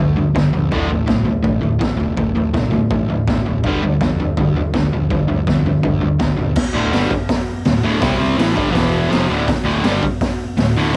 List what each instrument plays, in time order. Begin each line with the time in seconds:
Already playing: overdriven electric guitar G2 D3
0.00 picked electric bass D2
0.16 overdriven electric guitar G2 D3, floor tom
0.35 picked electric bass D2, overdriven electric guitar G2 D3, kick, snare, floor tom
0.53 picked electric bass A#1, overdriven electric guitar G2 D3, floor tom
0.71 picked electric bass D1, overdriven electric guitar D2 A2 D3, kick, floor tom
0.88 picked electric bass A1, overdriven electric guitar D2 A2, floor tom
1.06 picked electric bass C2, overdriven electric guitar D2 A2, kick, snare, floor tom
1.24 overdriven electric guitar D2 A2, floor tom
1.43 picked electric bass A1, overdriven electric guitar D2 A2, kick, floor tom
1.61 overdriven electric guitar D2 A2, floor tom
1.79 picked electric bass A1, overdriven electric guitar D2 A2, kick, snare, floor tom
1.97 picked electric bass F1, overdriven electric guitar D2 A2, floor tom
2.17 picked electric bass D1, overdriven electric guitar D2 A2, kick, floor tom
2.35 picked electric bass A1, overdriven electric guitar D2 A2, floor tom
2.54 picked electric bass C2, overdriven electric guitar D2 A2, kick, snare, floor tom
2.71 overdriven electric guitar D2 A2, floor tom
2.91 picked electric bass A1, overdriven electric guitar D2 A2, kick, floor tom
3.09 overdriven electric guitar D2 A2, floor tom
3.27 picked electric bass A1, overdriven electric guitar D2 A2, kick, snare, floor tom
3.45 picked electric bass F1, overdriven electric guitar D2 A2, floor tom
3.63 picked electric bass G1, overdriven electric guitar G2 D3 G3, kick, floor tom
3.82 picked electric bass D2, overdriven electric guitar G2 D3, floor tom
4.01 picked electric bass F2, overdriven electric guitar G2 D3, kick, snare, floor tom
4.20 overdriven electric guitar G2 D3, floor tom
4.37 picked electric bass D2, overdriven electric guitar G2 D3, kick, floor tom
4.56 overdriven electric guitar G2 D3, floor tom
4.74 picked electric bass D2, overdriven electric guitar G2 D3, kick, snare, floor tom
4.92 picked electric bass A#1, overdriven electric guitar G2 D3, floor tom
5.10 picked electric bass G1, overdriven electric guitar G2 D3, kick, floor tom
5.27 picked electric bass D2, overdriven electric guitar G2 D3, floor tom
5.47 picked electric bass F2, overdriven electric guitar G2 D3, kick, snare, floor tom
5.66 overdriven electric guitar G2 D3, floor tom
5.83 picked electric bass D2, overdriven electric guitar G2 D3, kick, floor tom
6.01 overdriven electric guitar G2 D3, floor tom
6.19 picked electric bass D2, overdriven electric guitar G2 D3, kick, snare, floor tom
6.37 picked electric bass A#1, overdriven electric guitar G2 D3, floor tom
6.56 kick, snare, crash
6.73 picked electric bass D1, overdriven electric guitar D2 A2 D3
6.92 picked electric bass G1, overdriven electric guitar G2 D3 G3, snare, open hi-hat
7.10 muted picked electric bass stroke, muted overdriven electric guitar stroke, kick
7.29 kick, snare, open hi-hat
7.65 picked electric bass D1, overdriven electric guitar D2 A2, snare, open hi-hat
7.83 picked electric bass D1, overdriven electric guitar D2 A2 D3
8.01 picked electric bass C2, overdriven electric guitar C3 G3 C4, kick, snare, open hi-hat
8.18 picked electric bass C2, overdriven electric guitar C3 G3 C4
8.38 picked electric bass A1, overdriven electric guitar A2 E3 A3, snare, open hi-hat
8.55 picked electric bass G1, overdriven electric guitar G2 D3 G3, kick
8.72 picked electric bass E1, overdriven electric guitar E2 B2 E3, kick, open hi-hat
8.76 snare
9.09 picked electric bass F1, overdriven electric guitar F2 C3 F3, open hi-hat
9.13 snare
9.28 picked electric bass D1, overdriven electric guitar D2 A2 D3
9.48 kick, snare, open hi-hat
9.64 picked electric bass D1, overdriven electric guitar D2 A2 D3
9.83 picked electric bass G1, overdriven electric guitar G2 D3 G3, snare, open hi-hat
10.03 muted picked electric bass stroke, muted overdriven electric guitar stroke, kick
10.21 kick, snare, open hi-hat
10.57 picked electric bass D1, overdriven electric guitar D2 A2, snare, open hi-hat
10.77 picked electric bass D1, overdriven electric guitar D2 A2 D3
10.93 overdriven electric guitar C3